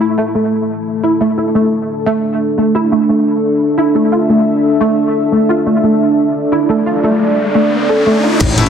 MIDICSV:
0, 0, Header, 1, 9, 480
1, 0, Start_track
1, 0, Tempo, 342857
1, 248, Time_signature, 4, 2, 24, 8
1, 12166, End_track
2, 0, Start_track
2, 0, Title_t, "Ambient pad"
2, 0, Program_c, 0, 92
2, 0, Note_on_c, 0, 57, 80
2, 0, Note_on_c, 0, 64, 72
2, 0, Note_on_c, 0, 69, 90
2, 210, Note_off_c, 0, 64, 0
2, 248, Note_on_c, 0, 62, 74
2, 4032, Note_off_c, 0, 57, 0
2, 4087, Note_on_c, 0, 76, 88
2, 7889, Note_off_c, 0, 76, 0
2, 7929, Note_on_c, 0, 74, 90
2, 11712, Note_off_c, 0, 62, 0
2, 11712, Note_off_c, 0, 69, 0
2, 11730, Note_off_c, 0, 74, 0
2, 12166, End_track
3, 0, Start_track
3, 0, Title_t, "Distorted electric guitar"
3, 0, Program_c, 1, 30
3, 12004, Note_on_c, 1, 69, 96
3, 12010, Note_on_c, 1, 64, 78
3, 12016, Note_on_c, 1, 57, 75
3, 12166, Note_off_c, 1, 57, 0
3, 12166, Note_off_c, 1, 64, 0
3, 12166, Note_off_c, 1, 69, 0
3, 12166, End_track
4, 0, Start_track
4, 0, Title_t, "Synth pluck"
4, 0, Program_c, 2, 84
4, 8, Note_on_c, 2, 64, 71
4, 203, Note_off_c, 2, 64, 0
4, 248, Note_on_c, 2, 57, 82
4, 378, Note_off_c, 2, 57, 0
4, 488, Note_on_c, 2, 57, 74
4, 566, Note_off_c, 2, 57, 0
4, 1448, Note_on_c, 2, 64, 75
4, 1643, Note_off_c, 2, 64, 0
4, 1688, Note_on_c, 2, 57, 78
4, 1766, Note_off_c, 2, 57, 0
4, 1928, Note_on_c, 2, 64, 71
4, 2123, Note_off_c, 2, 64, 0
4, 2168, Note_on_c, 2, 57, 80
4, 2298, Note_off_c, 2, 57, 0
4, 2888, Note_on_c, 2, 57, 103
4, 2966, Note_off_c, 2, 57, 0
4, 3608, Note_on_c, 2, 57, 78
4, 3803, Note_off_c, 2, 57, 0
4, 3847, Note_on_c, 2, 64, 72
4, 3978, Note_off_c, 2, 64, 0
4, 4087, Note_on_c, 2, 57, 82
4, 4218, Note_off_c, 2, 57, 0
4, 4328, Note_on_c, 2, 57, 76
4, 4406, Note_off_c, 2, 57, 0
4, 5288, Note_on_c, 2, 64, 78
4, 5483, Note_off_c, 2, 64, 0
4, 5528, Note_on_c, 2, 57, 78
4, 5606, Note_off_c, 2, 57, 0
4, 5768, Note_on_c, 2, 65, 71
4, 5963, Note_off_c, 2, 65, 0
4, 6008, Note_on_c, 2, 57, 82
4, 6138, Note_off_c, 2, 57, 0
4, 6727, Note_on_c, 2, 57, 100
4, 6806, Note_off_c, 2, 57, 0
4, 7448, Note_on_c, 2, 57, 78
4, 7526, Note_off_c, 2, 57, 0
4, 7688, Note_on_c, 2, 65, 72
4, 7883, Note_off_c, 2, 65, 0
4, 7928, Note_on_c, 2, 57, 80
4, 8058, Note_off_c, 2, 57, 0
4, 8168, Note_on_c, 2, 57, 78
4, 8246, Note_off_c, 2, 57, 0
4, 9128, Note_on_c, 2, 64, 77
4, 9323, Note_off_c, 2, 64, 0
4, 9368, Note_on_c, 2, 57, 77
4, 9446, Note_off_c, 2, 57, 0
4, 9608, Note_on_c, 2, 65, 71
4, 9803, Note_off_c, 2, 65, 0
4, 9848, Note_on_c, 2, 57, 81
4, 9978, Note_off_c, 2, 57, 0
4, 10567, Note_on_c, 2, 57, 100
4, 10646, Note_off_c, 2, 57, 0
4, 11048, Note_on_c, 2, 69, 76
4, 11126, Note_off_c, 2, 69, 0
4, 11288, Note_on_c, 2, 57, 101
4, 11418, Note_off_c, 2, 57, 0
4, 11528, Note_on_c, 2, 65, 73
4, 11658, Note_off_c, 2, 65, 0
4, 12166, End_track
5, 0, Start_track
5, 0, Title_t, "Detuned saw bass"
5, 0, Program_c, 3, 39
5, 11768, Note_on_c, 3, 33, 101
5, 11989, Note_off_c, 3, 33, 0
5, 12166, End_track
6, 0, Start_track
6, 0, Title_t, "FM bass"
6, 0, Program_c, 4, 39
6, 12008, Note_on_c, 4, 33, 96
6, 12166, Note_off_c, 4, 33, 0
6, 12166, End_track
7, 0, Start_track
7, 0, Title_t, "Impact"
7, 0, Program_c, 5, 103
7, 11768, Note_on_c, 5, 60, 78
7, 12166, Note_off_c, 5, 60, 0
7, 12166, End_track
8, 0, Start_track
8, 0, Title_t, "Riser"
8, 0, Program_c, 6, 103
8, 7928, Note_on_c, 6, 60, 74
8, 11768, Note_off_c, 6, 60, 0
8, 12166, End_track
9, 0, Start_track
9, 0, Title_t, "Drums"
9, 11759, Note_on_c, 9, 42, 85
9, 11768, Note_off_c, 9, 42, 0
9, 11768, Note_on_c, 9, 36, 119
9, 11768, Note_on_c, 9, 42, 97
9, 11768, Note_on_c, 9, 49, 101
9, 11882, Note_off_c, 9, 42, 0
9, 11882, Note_on_c, 9, 42, 41
9, 11908, Note_off_c, 9, 36, 0
9, 11908, Note_off_c, 9, 49, 0
9, 12006, Note_off_c, 9, 42, 0
9, 12006, Note_on_c, 9, 42, 67
9, 12008, Note_off_c, 9, 42, 0
9, 12008, Note_on_c, 9, 42, 72
9, 12148, Note_off_c, 9, 42, 0
9, 12166, End_track
0, 0, End_of_file